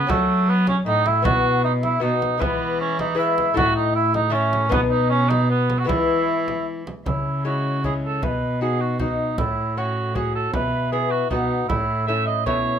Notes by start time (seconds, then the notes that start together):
Already playing: B3
0.07 F#3 A3 C#4 F#4 A4, frame drum
0.48 B3 B4
0.67 C#4 C#5, frame drum
0.86 A2 D#4 D#5
1.05 E4 E5, frame drum
1.22 B2 B3 E4 F#4 F#5, frame drum
1.63 D#4 D#5 E5
1.82 E4 E5, frame drum
2.00 B2 B3 D#4 F#4 D#5
2.22 frame drum
2.38 E3 G#3 B3 E4 C5, frame drum
2.45 B4
2.80 C#4 C#5
2.99 D#4 D#5, frame drum
3.15 G#3 B3 E4
3.19 E5
3.38 frame drum
3.54 A2 A3 E4 F#4 F#5, frame drum
3.76 D#4 D#5
3.95 E4 E5
4.14 D#4 D#5, frame drum
4.30 A3 C#4 E4 C#5
4.53 frame drum
4.69 B2 B3 D#4 B4, frame drum
4.90 D#4 D#5
5.10 C#4 C#5
5.29 D#4 D#5, frame drum
5.50 B3 B4
5.70 frame drum
5.79 F#4 F#5
5.84 E3 G#3 B3 E4
5.89 E3 E5, frame drum
6.48 frame drum
6.87 frame drum
7.06 C#3 E4 C#5, frame drum
7.45 G#3 C#4 E4 F#4
7.84 G#3 C#4 E4 G#4 C#5, frame drum
8.04 A4
8.22 B2 B4 E5, frame drum
8.28 D#5
8.61 D#4 F#4 G#4
8.81 F#4
8.99 D#4 F#4 D#5, frame drum
9.38 A2 E4 D5, frame drum
9.43 C#5
9.77 C#4 F#4 C#5
10.15 C#4 F#4 G#4, frame drum
10.35 A4
10.53 B2 B4 E5, frame drum
10.92 B3 E4 G#4
11.11 F#4
11.30 B2 B3 D#4 F#4 F#5, frame drum
11.69 A2 E4 C#5, frame drum
12.07 A3 C#4 E4 C#5 E5
12.27 D#5
12.46 B2 A3 C#4 E4 C#5, frame drum